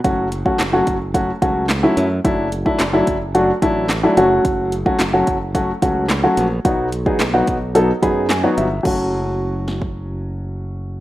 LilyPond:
<<
  \new Staff \with { instrumentName = "Grand piano" } { \time 4/4 \key fis \minor \tempo 4 = 109 << { r1 | r1 | r1 | r2 r8 b''8 gis''16 fis''16 e''8 |
r1 | } \\ { <fis a cis' fis'>8 r16 <fis a cis' fis'>16 r16 <fis a cis' fis'>8 r16 <fis a cis' fis'>16 r16 <fis a cis' fis'>8 r16 <fis a cis' e'>8 r16 | <fis a d' e'>8 r16 <fis a d' e'>16 r16 <fis a d' e'>8 r16 <fis a d' fis'>16 r16 <fis a d' e'>8 r16 <fis a d' e'>16 <fis a cis' fis'>8~ | <fis a cis' fis'>8 r16 <fis a cis' fis'>16 r16 <fis a cis' fis'>8 r16 <fis a cis' fis'>16 r16 <fis a cis' fis'>8 r16 <fis a cis' fis'>8 r16 | <fis b dis' fis'>8 r16 <fis b dis' gis'>16 r16 <fis b dis' fis'>8 r16 <fis b dis' a'>16 r16 <fis b dis' gis'>8 r16 <fis b dis' fis'>8 r16 |
<fis a cis' fis'>1 | } >> }
  \new Staff \with { instrumentName = "Fingered electric bass" } { \clef bass \time 4/4 \key fis \minor fis,,4 fis,,8 fis,,4 cis,4 fis,8 | fis,,4 fis,,8 fis,,4 a,,4 fis,,8 | fis,,4 fis,,8 fis,,4 cis,4 ais,,8 | b,,4 b,,8 b,,4 fis,4 g,,8 |
fis,,1 | }
  \new DrumStaff \with { instrumentName = "Drums" } \drummode { \time 4/4 <hh bd>8 hh16 bd16 <hc hh sn>8 <hh bd>8 <hh bd>8 <hh bd>8 <hc hh sn>8 hh8 | <hh bd>8 hh16 bd16 <hc hh sn>8 <hh bd>8 hh8 <hh bd>8 <hc hh sn>8 hh8 | <hh bd>8 hh16 bd16 <hc hh sn>8 <hh bd>8 <hh bd>8 <hh bd>8 <hc hh sn>8 hh8 | <hh bd>8 hh16 bd16 <hc hh sn>8 <hh bd>8 hh8 <hh bd>8 <hc hh sn>8 hh8 |
<cymc bd>4 r8 sn16 bd16 r4 r4 | }
>>